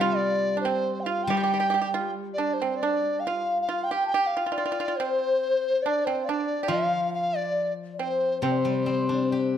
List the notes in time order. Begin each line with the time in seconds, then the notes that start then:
Already playing: C3 G3 F5
0.01 F4
0.16 D5
0.57 D4 C5
0.65 C4
1.00 F5 G5
1.06 F4
1.24 G3 G5
1.30 G4
1.37 G4
1.44 G4
1.54 G4
1.60 G4
1.70 G4
1.82 G4
1.94 F4
2.34 D5
2.38 D4
2.54 C5
2.62 C4
2.76 D5
2.83 D4
3.19 F5 G5
3.25 F4 F5
3.62 F5
3.68 F4 F5
3.84 G5
3.91 G4 G5
4.05 G5 A5
4.12 G4 G5
4.26 F5
4.37 F4
4.46 F4
4.52 F4 D5
4.58 F4
4.66 F4
4.72 F4
4.80 F4
4.88 F4
4.96 C4 C5
5.01 C5
5.82 D4 D5
6.05 C4 C5
6.23 D5 F5
6.29 D4 D5
6.63 G4
6.68 F3 F4 F5
7.14 F5
7.36 D5
7.93 D5
7.99 C4 C5
8.41 C3 C4 C5
8.51 D5
8.59 C5
8.65 G3 D5
8.75 C5
8.85 C4 D5
8.91 C5
8.99 D5
9.06 D4 C5
9.14 D5
9.23 C5
9.30 G4 D5
9.39 C5